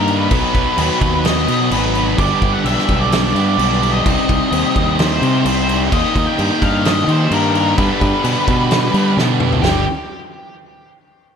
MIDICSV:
0, 0, Header, 1, 6, 480
1, 0, Start_track
1, 0, Key_signature, 1, "major"
1, 0, Tempo, 465839
1, 323, Time_signature, 4, 2, 24, 8
1, 11703, End_track
2, 0, Start_track
2, 0, Title_t, "Lead electric guitar"
2, 0, Program_c, 0, 29
2, 0, Note_on_c, 0, 70, 98
2, 185, Note_off_c, 0, 70, 0
2, 189, Note_on_c, 0, 71, 99
2, 1290, Note_on_c, 0, 75, 100
2, 1312, Note_off_c, 0, 71, 0
2, 1736, Note_off_c, 0, 75, 0
2, 1764, Note_on_c, 0, 71, 94
2, 2101, Note_off_c, 0, 71, 0
2, 2247, Note_on_c, 0, 74, 103
2, 2583, Note_off_c, 0, 74, 0
2, 2607, Note_on_c, 0, 78, 94
2, 2720, Note_off_c, 0, 78, 0
2, 2726, Note_on_c, 0, 76, 104
2, 3063, Note_off_c, 0, 76, 0
2, 3097, Note_on_c, 0, 74, 95
2, 3318, Note_off_c, 0, 74, 0
2, 3331, Note_on_c, 0, 74, 98
2, 3555, Note_off_c, 0, 74, 0
2, 3571, Note_on_c, 0, 74, 94
2, 3786, Note_off_c, 0, 74, 0
2, 3798, Note_on_c, 0, 74, 97
2, 4034, Note_off_c, 0, 74, 0
2, 4038, Note_on_c, 0, 75, 95
2, 5143, Note_on_c, 0, 72, 90
2, 5159, Note_off_c, 0, 75, 0
2, 5606, Note_off_c, 0, 72, 0
2, 5618, Note_on_c, 0, 72, 93
2, 5951, Note_off_c, 0, 72, 0
2, 6110, Note_on_c, 0, 75, 110
2, 6438, Note_off_c, 0, 75, 0
2, 6458, Note_on_c, 0, 79, 101
2, 6819, Note_on_c, 0, 77, 107
2, 6826, Note_off_c, 0, 79, 0
2, 7062, Note_off_c, 0, 77, 0
2, 7066, Note_on_c, 0, 75, 95
2, 7306, Note_on_c, 0, 72, 98
2, 7307, Note_off_c, 0, 75, 0
2, 7546, Note_off_c, 0, 72, 0
2, 7554, Note_on_c, 0, 70, 83
2, 8001, Note_off_c, 0, 70, 0
2, 8005, Note_on_c, 0, 71, 85
2, 9403, Note_off_c, 0, 71, 0
2, 9912, Note_on_c, 0, 67, 94
2, 10141, Note_off_c, 0, 67, 0
2, 11703, End_track
3, 0, Start_track
3, 0, Title_t, "Distorted electric guitar"
3, 0, Program_c, 1, 30
3, 0, Note_on_c, 1, 51, 90
3, 0, Note_on_c, 1, 58, 106
3, 0, Note_on_c, 1, 63, 104
3, 300, Note_off_c, 1, 51, 0
3, 311, Note_off_c, 1, 58, 0
3, 319, Note_off_c, 1, 63, 0
3, 11703, End_track
4, 0, Start_track
4, 0, Title_t, "Overdriven electric guitar"
4, 0, Program_c, 2, 29
4, 0, Note_on_c, 2, 51, 89
4, 68, Note_on_c, 2, 63, 83
4, 88, Note_on_c, 2, 58, 70
4, 98, Note_on_c, 2, 55, 66
4, 301, Note_off_c, 2, 51, 0
4, 301, Note_off_c, 2, 63, 0
4, 305, Note_on_c, 2, 47, 89
4, 311, Note_off_c, 2, 58, 0
4, 315, Note_off_c, 2, 55, 0
4, 319, Note_on_c, 2, 54, 97
4, 326, Note_on_c, 2, 59, 97
4, 335, Note_on_c, 2, 63, 100
4, 536, Note_off_c, 2, 63, 0
4, 548, Note_on_c, 2, 63, 76
4, 559, Note_off_c, 2, 59, 0
4, 563, Note_off_c, 2, 54, 0
4, 563, Note_on_c, 2, 59, 73
4, 576, Note_on_c, 2, 54, 67
4, 783, Note_off_c, 2, 47, 0
4, 794, Note_off_c, 2, 54, 0
4, 795, Note_on_c, 2, 47, 84
4, 806, Note_on_c, 2, 54, 93
4, 808, Note_off_c, 2, 63, 0
4, 809, Note_off_c, 2, 59, 0
4, 813, Note_on_c, 2, 59, 102
4, 820, Note_on_c, 2, 63, 114
4, 1019, Note_off_c, 2, 63, 0
4, 1031, Note_on_c, 2, 63, 75
4, 1042, Note_off_c, 2, 59, 0
4, 1046, Note_on_c, 2, 59, 72
4, 1052, Note_off_c, 2, 54, 0
4, 1064, Note_on_c, 2, 54, 63
4, 1268, Note_off_c, 2, 47, 0
4, 1277, Note_off_c, 2, 54, 0
4, 1281, Note_on_c, 2, 47, 82
4, 1284, Note_off_c, 2, 59, 0
4, 1289, Note_on_c, 2, 54, 82
4, 1296, Note_off_c, 2, 63, 0
4, 1297, Note_on_c, 2, 59, 92
4, 1308, Note_on_c, 2, 63, 96
4, 1507, Note_off_c, 2, 63, 0
4, 1520, Note_on_c, 2, 63, 69
4, 1523, Note_off_c, 2, 59, 0
4, 1534, Note_off_c, 2, 54, 0
4, 1535, Note_on_c, 2, 59, 62
4, 1546, Note_on_c, 2, 54, 56
4, 1738, Note_off_c, 2, 47, 0
4, 1750, Note_on_c, 2, 47, 97
4, 1752, Note_off_c, 2, 54, 0
4, 1758, Note_off_c, 2, 59, 0
4, 1764, Note_on_c, 2, 54, 94
4, 1765, Note_off_c, 2, 63, 0
4, 1770, Note_on_c, 2, 59, 94
4, 1778, Note_on_c, 2, 63, 102
4, 1987, Note_off_c, 2, 63, 0
4, 1999, Note_on_c, 2, 63, 67
4, 2002, Note_off_c, 2, 59, 0
4, 2011, Note_off_c, 2, 54, 0
4, 2015, Note_on_c, 2, 59, 64
4, 2024, Note_on_c, 2, 54, 57
4, 2225, Note_off_c, 2, 47, 0
4, 2230, Note_off_c, 2, 63, 0
4, 2232, Note_on_c, 2, 43, 94
4, 2238, Note_off_c, 2, 59, 0
4, 2242, Note_off_c, 2, 54, 0
4, 2242, Note_on_c, 2, 50, 93
4, 2248, Note_on_c, 2, 55, 82
4, 2254, Note_on_c, 2, 59, 99
4, 2262, Note_on_c, 2, 62, 102
4, 2469, Note_off_c, 2, 62, 0
4, 2481, Note_on_c, 2, 62, 75
4, 2483, Note_off_c, 2, 59, 0
4, 2495, Note_on_c, 2, 59, 65
4, 2505, Note_off_c, 2, 55, 0
4, 2509, Note_on_c, 2, 55, 61
4, 2704, Note_off_c, 2, 43, 0
4, 2712, Note_off_c, 2, 50, 0
4, 2717, Note_on_c, 2, 43, 83
4, 2724, Note_off_c, 2, 59, 0
4, 2724, Note_on_c, 2, 50, 92
4, 2727, Note_off_c, 2, 55, 0
4, 2730, Note_off_c, 2, 62, 0
4, 2731, Note_on_c, 2, 55, 84
4, 2737, Note_on_c, 2, 59, 88
4, 2742, Note_on_c, 2, 62, 93
4, 2946, Note_off_c, 2, 62, 0
4, 2958, Note_on_c, 2, 62, 78
4, 2960, Note_off_c, 2, 59, 0
4, 2972, Note_on_c, 2, 59, 68
4, 2982, Note_off_c, 2, 55, 0
4, 2986, Note_on_c, 2, 55, 64
4, 3180, Note_off_c, 2, 50, 0
4, 3193, Note_on_c, 2, 50, 78
4, 3201, Note_off_c, 2, 55, 0
4, 3202, Note_off_c, 2, 59, 0
4, 3204, Note_off_c, 2, 43, 0
4, 3205, Note_on_c, 2, 55, 80
4, 3212, Note_off_c, 2, 62, 0
4, 3215, Note_on_c, 2, 59, 84
4, 3225, Note_on_c, 2, 62, 98
4, 3420, Note_off_c, 2, 62, 0
4, 3433, Note_on_c, 2, 62, 76
4, 3441, Note_off_c, 2, 59, 0
4, 3453, Note_on_c, 2, 59, 66
4, 3459, Note_off_c, 2, 55, 0
4, 3463, Note_on_c, 2, 55, 65
4, 3672, Note_off_c, 2, 50, 0
4, 3680, Note_on_c, 2, 43, 86
4, 3685, Note_on_c, 2, 50, 100
4, 3687, Note_off_c, 2, 59, 0
4, 3689, Note_off_c, 2, 55, 0
4, 3693, Note_off_c, 2, 62, 0
4, 3693, Note_on_c, 2, 55, 114
4, 3699, Note_on_c, 2, 59, 102
4, 3705, Note_on_c, 2, 62, 109
4, 3905, Note_off_c, 2, 62, 0
4, 3917, Note_on_c, 2, 62, 73
4, 3921, Note_off_c, 2, 59, 0
4, 3934, Note_on_c, 2, 59, 61
4, 3942, Note_off_c, 2, 55, 0
4, 3946, Note_on_c, 2, 55, 62
4, 4151, Note_off_c, 2, 62, 0
4, 4152, Note_off_c, 2, 43, 0
4, 4155, Note_off_c, 2, 50, 0
4, 4159, Note_off_c, 2, 59, 0
4, 4162, Note_on_c, 2, 48, 88
4, 4172, Note_off_c, 2, 55, 0
4, 4176, Note_on_c, 2, 55, 104
4, 4184, Note_on_c, 2, 60, 104
4, 4192, Note_on_c, 2, 63, 106
4, 4407, Note_off_c, 2, 63, 0
4, 4411, Note_on_c, 2, 63, 81
4, 4412, Note_off_c, 2, 60, 0
4, 4425, Note_on_c, 2, 60, 64
4, 4434, Note_off_c, 2, 55, 0
4, 4438, Note_on_c, 2, 55, 71
4, 4629, Note_off_c, 2, 48, 0
4, 4641, Note_on_c, 2, 48, 84
4, 4647, Note_off_c, 2, 60, 0
4, 4650, Note_off_c, 2, 55, 0
4, 4654, Note_on_c, 2, 55, 85
4, 4660, Note_on_c, 2, 60, 99
4, 4667, Note_off_c, 2, 63, 0
4, 4671, Note_on_c, 2, 63, 99
4, 4887, Note_off_c, 2, 63, 0
4, 4892, Note_on_c, 2, 63, 86
4, 4897, Note_off_c, 2, 60, 0
4, 4909, Note_on_c, 2, 60, 78
4, 4918, Note_off_c, 2, 55, 0
4, 4922, Note_on_c, 2, 55, 69
4, 5121, Note_off_c, 2, 48, 0
4, 5134, Note_on_c, 2, 48, 78
4, 5139, Note_off_c, 2, 60, 0
4, 5142, Note_off_c, 2, 55, 0
4, 5146, Note_on_c, 2, 55, 83
4, 5149, Note_off_c, 2, 63, 0
4, 5152, Note_on_c, 2, 60, 93
4, 5161, Note_on_c, 2, 63, 82
4, 5353, Note_off_c, 2, 63, 0
4, 5365, Note_on_c, 2, 63, 74
4, 5370, Note_off_c, 2, 60, 0
4, 5382, Note_on_c, 2, 60, 74
4, 5391, Note_off_c, 2, 55, 0
4, 5395, Note_on_c, 2, 55, 59
4, 5583, Note_off_c, 2, 48, 0
4, 5595, Note_on_c, 2, 48, 95
4, 5604, Note_off_c, 2, 60, 0
4, 5607, Note_off_c, 2, 55, 0
4, 5611, Note_on_c, 2, 55, 116
4, 5614, Note_off_c, 2, 63, 0
4, 5616, Note_on_c, 2, 60, 116
4, 5626, Note_on_c, 2, 63, 102
4, 5836, Note_off_c, 2, 63, 0
4, 5848, Note_on_c, 2, 63, 78
4, 5849, Note_off_c, 2, 60, 0
4, 5862, Note_on_c, 2, 60, 68
4, 5871, Note_off_c, 2, 55, 0
4, 5875, Note_on_c, 2, 55, 61
4, 6070, Note_off_c, 2, 48, 0
4, 6077, Note_off_c, 2, 63, 0
4, 6077, Note_on_c, 2, 51, 105
4, 6083, Note_off_c, 2, 60, 0
4, 6087, Note_off_c, 2, 55, 0
4, 6091, Note_on_c, 2, 55, 88
4, 6099, Note_on_c, 2, 58, 104
4, 6104, Note_on_c, 2, 63, 115
4, 6311, Note_off_c, 2, 63, 0
4, 6324, Note_on_c, 2, 63, 77
4, 6326, Note_off_c, 2, 58, 0
4, 6339, Note_on_c, 2, 58, 70
4, 6345, Note_off_c, 2, 55, 0
4, 6349, Note_on_c, 2, 55, 56
4, 6550, Note_off_c, 2, 51, 0
4, 6562, Note_on_c, 2, 51, 96
4, 6568, Note_off_c, 2, 58, 0
4, 6571, Note_off_c, 2, 55, 0
4, 6575, Note_on_c, 2, 55, 85
4, 6577, Note_off_c, 2, 63, 0
4, 6581, Note_on_c, 2, 58, 94
4, 6589, Note_on_c, 2, 63, 91
4, 6784, Note_off_c, 2, 63, 0
4, 6796, Note_on_c, 2, 63, 83
4, 6804, Note_off_c, 2, 58, 0
4, 6817, Note_on_c, 2, 58, 64
4, 6822, Note_off_c, 2, 55, 0
4, 6827, Note_on_c, 2, 55, 61
4, 7038, Note_off_c, 2, 51, 0
4, 7050, Note_on_c, 2, 51, 82
4, 7059, Note_off_c, 2, 58, 0
4, 7060, Note_off_c, 2, 55, 0
4, 7064, Note_on_c, 2, 55, 88
4, 7069, Note_off_c, 2, 63, 0
4, 7071, Note_on_c, 2, 58, 93
4, 7081, Note_on_c, 2, 63, 91
4, 7272, Note_off_c, 2, 63, 0
4, 7284, Note_on_c, 2, 63, 72
4, 7291, Note_off_c, 2, 58, 0
4, 7303, Note_on_c, 2, 58, 69
4, 7314, Note_off_c, 2, 55, 0
4, 7318, Note_on_c, 2, 55, 65
4, 7511, Note_off_c, 2, 51, 0
4, 7523, Note_on_c, 2, 51, 104
4, 7530, Note_off_c, 2, 55, 0
4, 7530, Note_off_c, 2, 58, 0
4, 7534, Note_on_c, 2, 55, 96
4, 7541, Note_off_c, 2, 63, 0
4, 7542, Note_on_c, 2, 58, 99
4, 7553, Note_on_c, 2, 63, 109
4, 7751, Note_off_c, 2, 63, 0
4, 7763, Note_on_c, 2, 63, 80
4, 7766, Note_off_c, 2, 58, 0
4, 7778, Note_on_c, 2, 58, 69
4, 7790, Note_off_c, 2, 55, 0
4, 7794, Note_on_c, 2, 55, 61
4, 7993, Note_off_c, 2, 51, 0
4, 7993, Note_off_c, 2, 63, 0
4, 7998, Note_on_c, 2, 43, 87
4, 8001, Note_off_c, 2, 58, 0
4, 8003, Note_on_c, 2, 50, 96
4, 8007, Note_off_c, 2, 55, 0
4, 8011, Note_on_c, 2, 55, 111
4, 8020, Note_on_c, 2, 59, 116
4, 8026, Note_on_c, 2, 62, 104
4, 8227, Note_off_c, 2, 62, 0
4, 8239, Note_on_c, 2, 62, 73
4, 8240, Note_off_c, 2, 59, 0
4, 8253, Note_on_c, 2, 59, 70
4, 8257, Note_off_c, 2, 55, 0
4, 8269, Note_on_c, 2, 55, 64
4, 8457, Note_off_c, 2, 43, 0
4, 8466, Note_off_c, 2, 50, 0
4, 8470, Note_on_c, 2, 43, 93
4, 8471, Note_off_c, 2, 55, 0
4, 8477, Note_off_c, 2, 59, 0
4, 8478, Note_on_c, 2, 50, 89
4, 8483, Note_on_c, 2, 55, 90
4, 8485, Note_off_c, 2, 62, 0
4, 8490, Note_on_c, 2, 59, 100
4, 8497, Note_on_c, 2, 62, 100
4, 8702, Note_off_c, 2, 62, 0
4, 8714, Note_on_c, 2, 62, 76
4, 8717, Note_off_c, 2, 59, 0
4, 8729, Note_on_c, 2, 59, 74
4, 8732, Note_off_c, 2, 55, 0
4, 8744, Note_on_c, 2, 55, 60
4, 8938, Note_off_c, 2, 50, 0
4, 8950, Note_on_c, 2, 50, 86
4, 8955, Note_off_c, 2, 55, 0
4, 8959, Note_off_c, 2, 43, 0
4, 8961, Note_off_c, 2, 59, 0
4, 8967, Note_off_c, 2, 62, 0
4, 8968, Note_on_c, 2, 55, 77
4, 8973, Note_on_c, 2, 59, 94
4, 8980, Note_on_c, 2, 62, 91
4, 9190, Note_off_c, 2, 62, 0
4, 9203, Note_on_c, 2, 62, 77
4, 9207, Note_off_c, 2, 59, 0
4, 9214, Note_off_c, 2, 55, 0
4, 9220, Note_on_c, 2, 59, 70
4, 9226, Note_on_c, 2, 55, 62
4, 9428, Note_off_c, 2, 50, 0
4, 9432, Note_on_c, 2, 43, 103
4, 9437, Note_off_c, 2, 55, 0
4, 9439, Note_off_c, 2, 59, 0
4, 9440, Note_on_c, 2, 50, 103
4, 9446, Note_off_c, 2, 62, 0
4, 9449, Note_on_c, 2, 55, 109
4, 9452, Note_on_c, 2, 59, 108
4, 9458, Note_on_c, 2, 62, 105
4, 9656, Note_off_c, 2, 62, 0
4, 9669, Note_on_c, 2, 62, 70
4, 9675, Note_off_c, 2, 59, 0
4, 9685, Note_off_c, 2, 55, 0
4, 9687, Note_on_c, 2, 59, 69
4, 9697, Note_on_c, 2, 55, 62
4, 9903, Note_off_c, 2, 62, 0
4, 9904, Note_off_c, 2, 43, 0
4, 9908, Note_off_c, 2, 50, 0
4, 9912, Note_off_c, 2, 59, 0
4, 9917, Note_off_c, 2, 55, 0
4, 9918, Note_on_c, 2, 43, 94
4, 9927, Note_on_c, 2, 50, 105
4, 9934, Note_on_c, 2, 55, 96
4, 10113, Note_off_c, 2, 43, 0
4, 10118, Note_off_c, 2, 50, 0
4, 10122, Note_off_c, 2, 55, 0
4, 11703, End_track
5, 0, Start_track
5, 0, Title_t, "Fingered electric bass"
5, 0, Program_c, 3, 33
5, 0, Note_on_c, 3, 43, 103
5, 275, Note_off_c, 3, 43, 0
5, 322, Note_on_c, 3, 35, 102
5, 432, Note_off_c, 3, 35, 0
5, 564, Note_on_c, 3, 35, 111
5, 673, Note_off_c, 3, 35, 0
5, 799, Note_on_c, 3, 39, 93
5, 911, Note_off_c, 3, 39, 0
5, 1045, Note_on_c, 3, 39, 91
5, 1485, Note_off_c, 3, 39, 0
5, 1524, Note_on_c, 3, 47, 82
5, 1744, Note_off_c, 3, 47, 0
5, 1761, Note_on_c, 3, 32, 101
5, 2204, Note_off_c, 3, 32, 0
5, 2249, Note_on_c, 3, 31, 106
5, 2358, Note_off_c, 3, 31, 0
5, 2491, Note_on_c, 3, 31, 104
5, 2600, Note_off_c, 3, 31, 0
5, 2723, Note_on_c, 3, 35, 92
5, 2835, Note_off_c, 3, 35, 0
5, 2978, Note_on_c, 3, 35, 89
5, 3414, Note_off_c, 3, 35, 0
5, 3448, Note_on_c, 3, 43, 89
5, 3669, Note_off_c, 3, 43, 0
5, 3688, Note_on_c, 3, 35, 95
5, 4129, Note_off_c, 3, 35, 0
5, 4186, Note_on_c, 3, 36, 98
5, 4289, Note_off_c, 3, 36, 0
5, 4423, Note_on_c, 3, 36, 116
5, 4528, Note_off_c, 3, 36, 0
5, 4653, Note_on_c, 3, 39, 86
5, 4762, Note_off_c, 3, 39, 0
5, 4906, Note_on_c, 3, 39, 104
5, 5339, Note_off_c, 3, 39, 0
5, 5374, Note_on_c, 3, 48, 88
5, 5593, Note_off_c, 3, 48, 0
5, 5617, Note_on_c, 3, 36, 95
5, 6054, Note_off_c, 3, 36, 0
5, 6105, Note_on_c, 3, 39, 106
5, 6209, Note_off_c, 3, 39, 0
5, 6343, Note_on_c, 3, 39, 99
5, 6448, Note_off_c, 3, 39, 0
5, 6582, Note_on_c, 3, 43, 100
5, 6687, Note_off_c, 3, 43, 0
5, 6823, Note_on_c, 3, 43, 90
5, 7257, Note_off_c, 3, 43, 0
5, 7290, Note_on_c, 3, 51, 86
5, 7510, Note_off_c, 3, 51, 0
5, 7530, Note_on_c, 3, 43, 99
5, 7969, Note_off_c, 3, 43, 0
5, 8019, Note_on_c, 3, 43, 100
5, 8125, Note_off_c, 3, 43, 0
5, 8260, Note_on_c, 3, 43, 110
5, 8365, Note_off_c, 3, 43, 0
5, 8490, Note_on_c, 3, 47, 86
5, 8600, Note_off_c, 3, 47, 0
5, 8736, Note_on_c, 3, 47, 97
5, 9171, Note_off_c, 3, 47, 0
5, 9210, Note_on_c, 3, 55, 81
5, 9427, Note_off_c, 3, 55, 0
5, 9447, Note_on_c, 3, 47, 95
5, 9885, Note_off_c, 3, 47, 0
5, 9928, Note_on_c, 3, 31, 102
5, 10150, Note_off_c, 3, 31, 0
5, 11703, End_track
6, 0, Start_track
6, 0, Title_t, "Drums"
6, 79, Note_on_c, 9, 49, 62
6, 182, Note_off_c, 9, 49, 0
6, 318, Note_on_c, 9, 49, 93
6, 321, Note_on_c, 9, 36, 120
6, 421, Note_off_c, 9, 49, 0
6, 424, Note_off_c, 9, 36, 0
6, 563, Note_on_c, 9, 36, 86
6, 566, Note_on_c, 9, 49, 61
6, 666, Note_off_c, 9, 36, 0
6, 669, Note_off_c, 9, 49, 0
6, 801, Note_on_c, 9, 49, 89
6, 904, Note_off_c, 9, 49, 0
6, 1045, Note_on_c, 9, 36, 83
6, 1045, Note_on_c, 9, 49, 68
6, 1148, Note_off_c, 9, 36, 0
6, 1148, Note_off_c, 9, 49, 0
6, 1285, Note_on_c, 9, 49, 90
6, 1296, Note_on_c, 9, 38, 109
6, 1388, Note_off_c, 9, 49, 0
6, 1399, Note_off_c, 9, 38, 0
6, 1527, Note_on_c, 9, 49, 74
6, 1631, Note_off_c, 9, 49, 0
6, 1766, Note_on_c, 9, 49, 88
6, 1869, Note_off_c, 9, 49, 0
6, 2010, Note_on_c, 9, 49, 62
6, 2113, Note_off_c, 9, 49, 0
6, 2251, Note_on_c, 9, 36, 105
6, 2252, Note_on_c, 9, 49, 85
6, 2354, Note_off_c, 9, 36, 0
6, 2355, Note_off_c, 9, 49, 0
6, 2493, Note_on_c, 9, 36, 89
6, 2494, Note_on_c, 9, 49, 64
6, 2596, Note_off_c, 9, 36, 0
6, 2597, Note_off_c, 9, 49, 0
6, 2737, Note_on_c, 9, 49, 88
6, 2840, Note_off_c, 9, 49, 0
6, 2869, Note_on_c, 9, 38, 34
6, 2972, Note_off_c, 9, 38, 0
6, 2976, Note_on_c, 9, 36, 84
6, 2976, Note_on_c, 9, 49, 62
6, 3079, Note_off_c, 9, 36, 0
6, 3079, Note_off_c, 9, 49, 0
6, 3218, Note_on_c, 9, 49, 82
6, 3230, Note_on_c, 9, 38, 114
6, 3321, Note_off_c, 9, 49, 0
6, 3333, Note_off_c, 9, 38, 0
6, 3462, Note_on_c, 9, 49, 65
6, 3565, Note_off_c, 9, 49, 0
6, 3702, Note_on_c, 9, 49, 85
6, 3805, Note_off_c, 9, 49, 0
6, 3947, Note_on_c, 9, 49, 68
6, 4050, Note_off_c, 9, 49, 0
6, 4183, Note_on_c, 9, 36, 114
6, 4184, Note_on_c, 9, 49, 87
6, 4286, Note_off_c, 9, 36, 0
6, 4287, Note_off_c, 9, 49, 0
6, 4423, Note_on_c, 9, 36, 83
6, 4425, Note_on_c, 9, 49, 60
6, 4526, Note_off_c, 9, 36, 0
6, 4528, Note_off_c, 9, 49, 0
6, 4663, Note_on_c, 9, 49, 96
6, 4766, Note_off_c, 9, 49, 0
6, 4903, Note_on_c, 9, 36, 94
6, 4903, Note_on_c, 9, 49, 64
6, 5006, Note_off_c, 9, 49, 0
6, 5007, Note_off_c, 9, 36, 0
6, 5142, Note_on_c, 9, 49, 92
6, 5153, Note_on_c, 9, 38, 101
6, 5245, Note_off_c, 9, 49, 0
6, 5256, Note_off_c, 9, 38, 0
6, 5385, Note_on_c, 9, 49, 74
6, 5489, Note_off_c, 9, 49, 0
6, 5621, Note_on_c, 9, 49, 103
6, 5724, Note_off_c, 9, 49, 0
6, 5863, Note_on_c, 9, 49, 76
6, 5967, Note_off_c, 9, 49, 0
6, 6103, Note_on_c, 9, 36, 107
6, 6105, Note_on_c, 9, 49, 97
6, 6206, Note_off_c, 9, 36, 0
6, 6208, Note_off_c, 9, 49, 0
6, 6342, Note_on_c, 9, 36, 84
6, 6345, Note_on_c, 9, 49, 66
6, 6445, Note_off_c, 9, 36, 0
6, 6448, Note_off_c, 9, 49, 0
6, 6581, Note_on_c, 9, 49, 81
6, 6685, Note_off_c, 9, 49, 0
6, 6822, Note_on_c, 9, 36, 85
6, 6825, Note_on_c, 9, 49, 68
6, 6925, Note_off_c, 9, 36, 0
6, 6928, Note_off_c, 9, 49, 0
6, 7061, Note_on_c, 9, 49, 82
6, 7072, Note_on_c, 9, 38, 108
6, 7164, Note_off_c, 9, 49, 0
6, 7175, Note_off_c, 9, 38, 0
6, 7301, Note_on_c, 9, 49, 60
6, 7404, Note_off_c, 9, 49, 0
6, 7538, Note_on_c, 9, 49, 85
6, 7641, Note_off_c, 9, 49, 0
6, 7782, Note_on_c, 9, 49, 66
6, 7885, Note_off_c, 9, 49, 0
6, 8016, Note_on_c, 9, 49, 79
6, 8017, Note_on_c, 9, 36, 105
6, 8119, Note_off_c, 9, 49, 0
6, 8120, Note_off_c, 9, 36, 0
6, 8257, Note_on_c, 9, 36, 85
6, 8259, Note_on_c, 9, 49, 54
6, 8360, Note_off_c, 9, 36, 0
6, 8362, Note_off_c, 9, 49, 0
6, 8495, Note_on_c, 9, 49, 86
6, 8598, Note_off_c, 9, 49, 0
6, 8736, Note_on_c, 9, 36, 94
6, 8736, Note_on_c, 9, 49, 61
6, 8839, Note_off_c, 9, 36, 0
6, 8839, Note_off_c, 9, 49, 0
6, 8973, Note_on_c, 9, 49, 78
6, 8985, Note_on_c, 9, 38, 120
6, 9076, Note_off_c, 9, 49, 0
6, 9088, Note_off_c, 9, 38, 0
6, 9215, Note_on_c, 9, 49, 72
6, 9318, Note_off_c, 9, 49, 0
6, 9465, Note_on_c, 9, 38, 69
6, 9568, Note_off_c, 9, 38, 0
6, 9688, Note_on_c, 9, 45, 102
6, 9791, Note_off_c, 9, 45, 0
6, 9813, Note_on_c, 9, 43, 92
6, 9916, Note_off_c, 9, 43, 0
6, 9930, Note_on_c, 9, 43, 102
6, 9941, Note_on_c, 9, 38, 108
6, 10033, Note_off_c, 9, 43, 0
6, 10044, Note_off_c, 9, 38, 0
6, 11703, End_track
0, 0, End_of_file